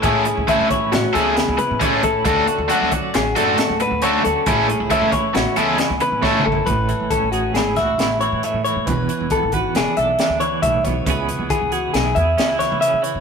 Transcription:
<<
  \new Staff \with { instrumentName = "Clean electric guitar" } { \time 5/4 \key a \major \tempo 4 = 136 gis'4 e''8 cis''8 fis'8 gis'4 b'8 cis''8 a'8 | a'4 fis''8 d''8 gis'8 a'4 b'8 cis''8 a'8 | gis'4 e''8 cis''8 fis'8 gis'4 b'8 cis''8 a'8 | b'4 a'8 fis'8 gis'8 e''4 cis''8 e''8 cis''8 |
b'4 a'8 fis'8 gis'8 e''4 cis''8 e''8 cis''8 | b'4 gis'8 fis'8 gis'8 e''4 cis''8 e''8 cis''8 | }
  \new Staff \with { instrumentName = "Overdriven electric guitar" } { \time 5/4 \key a \major <a cis' e' a'>8 r8 <a cis' e' a'>8 r4 <a cis' e' a'>8 r4 <a cis' e' a'>8 r8 | <a d' fis' a'>8 r8 <a d' fis' a'>8 r4 <a d' fis' a'>8 r4 <a d' fis' a'>8 r8 | <a cis' e' a'>8 r8 <a cis' e' a'>8 r4 <a cis' e' a'>8 r4 <a cis' e' a'>8 r8 | r1 r4 |
r1 r4 | r1 r4 | }
  \new Staff \with { instrumentName = "Clean electric guitar" } { \time 5/4 \key a \major << { cis'8 e'8 cis'8 e'8 cis'8 gis'8 e'4 cis'8 e'8 | cis'8 fis'8 cis'8 fis'8 cis'8 a'8 fis'4 cis'8 fis'8 | cis'8 cis'16 e'16 cis'8 e'8 cis'8 gis'8 e'4 cis'8 e'8 | r4 cis'8 gis'8 e'8 fis'8 e'2 |
r4 b8 b'8 d'8 a'8 d'2 | <e b e' gis'>4 b8 gis'8 e'8 gis'8 cis'16 e'4.~ e'16 | } \\ { <a, e>4 e4. e,4. a,4 | d4 fis4. a,4. d4 | a,4 e4. e,4. a,4 | a,8 e2. e8 a,8 e8 |
e,8 e2. e8 a,8 b,8 | cis8 e2. e8 cis8 e8 | } >> }
  \new Staff \with { instrumentName = "Upright bass" } { \clef bass \time 5/4 \key a \major a,8. cis,8 a,8 r16 a,,16 r16 cis,8. cis,16 r16 a,8. a,,8 | d,8 r16 d,16 r16 d,8 r16 a,,8 fis,8 r16 d,8 d,8. d,16 r16 | a,,8. cis,8 a,8 r16 a,,16 r16 cis,8. cis,16 r16 a,8. a,,8 | a,,8. a,,8 a,,8. gis,,8 cis,8 a,,8. a,16 r16 a,8 a,16 |
e,,8 r16 e,,8 gis,,8. e,,16 r16 b,,8 r16 d,8. b,,8 b,,8 | cis,8. cis,8 cis,8. b,,8 e,8 cis,8. cis16 r16 cis8 cis16 | }
  \new DrumStaff \with { instrumentName = "Drums" } \drummode { \time 5/4 <hh bd>8 hh8 <hh bd>8 <hh bd>8 <hh sn>8 <hh sn>8 <hh sn>8 hh8 <hh bd>8 <hh bd>8 | <hh bd>8 hh8 hh8 <hh bd>8 <hh sn>8 <hh sn>8 <hh sn>8 hh8 hh8 hh8 | <hh bd>8 hh8 <hh bd>8 <hh bd>8 <hh sn>8 hh8 <hh sn>8 hh8 \tuplet 3/2 { <bd sn>8 toml8 tomfh8 } | <hh bd>8 hh8 <hh bd>8 hh8 <hh sn>8 <hh bd sn>8 <hh sn>8 hh8 hh8 hh8 |
<hh bd>8 hh8 <hh bd>8 <hh bd>8 <hh sn>8 hh8 <hh sn>8 hh8 <hh bd>8 <hh bd>8 | <hh bd>8 hh8 <hh bd>8 hh8 <hh sn>8 <hh bd>8 <hh sn>8 <hh sn>8 hh8 hh8 | }
>>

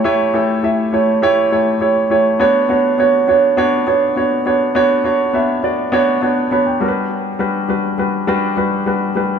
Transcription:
\new Staff \with { instrumentName = "Grand piano" } { \time 4/4 \key b \minor \tempo 4 = 102 << { r1 | r1 | r2. b''16 g''8. | r1 | } \\ { <a e' g' cis''>8 <a e' g' a'>8 <a e' g' e''>8 <a e' g' cis''>8 <a e' g' cis''>8 <a e' g' cis''>8 <a e' g' cis''>8 <a e' g' cis''>8 | <b d' fis' cis''>8 <b d' fis' cis''>8 <b d' fis' cis''>8 <b d' fis' cis''>8 <b d' fis' cis''>8 <b d' fis' cis''>8 <b d' fis' cis''>8 <b d' fis' cis''>8 | <b d' fis' cis''>8 <b d' fis' cis''>8 <b d' fis' e''>8 <b d' fis' d''>8 <b d' fis' cis''>8 <b d' fis' cis''>8 <b d' fis' cis''>8 <g d' fis' bes' b'>8~ | <g d' fis' bes' b'>8 <g d' fis' b'>8 <g d' fis' b'>8 <g d' fis' b'>8 <g d' fis' b'>8 <g d' fis' b'>8 <g d' fis' b'>8 <g d' fis' b'>8 | } >> }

